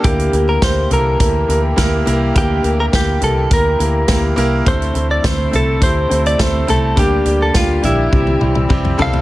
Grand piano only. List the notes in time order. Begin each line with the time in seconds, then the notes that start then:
0.03 D3 A#3 E4 G4 A#4
0.33 A#3 E4 G4 A#4
0.61 A#3 E4 G4 A#4
0.90 A#3 E4 G4 A4
1.19 A#3 E4 G4 A#4
1.49 A#3 E4 G4 A#4
1.76 A#3 E4 G4 A#4
2.06 A#3 E4 G4 A#4
2.35 D3 A#3 E4 G4 A#4
2.63 A#3 E4 G4 A#4
2.92 A#3 E4 G4 A#4
3.21 A#3 E4 G4 A#4
3.50 A#3 E4 G4 A#4
3.79 A#3 E4 G4 A#4
4.08 A#3 E4 G4 A#4
4.36 A#3 E4 G4 A#4
4.65 D3 A3 C4 E4 A4
4.94 A3 C4 E4 A4
5.23 A3 C4 E4 C5
5.51 A3 C4 E4 A4
5.80 A3 C4 E4 G4
6.09 A3 C4 E4 C5
6.38 A3 C4 E4 A4
6.67 A3 C4 E4 A4
6.96 D3 G3 A#3 D4 G4
7.25 G3 A#3 D4 G4
7.53 G3 A#3 D4 G4
7.82 G3 A#3 D4 G4
8.11 C3 G3 C4 E4 G4
8.40 G3 C4 E4 G4
8.69 G3 C4 E4 G4
8.98 G3 C4 E4 A4